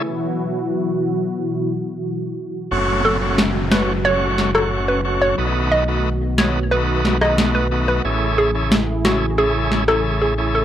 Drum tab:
SD |----------------|----o-o---or----|------o---oro---|----o-o---or----|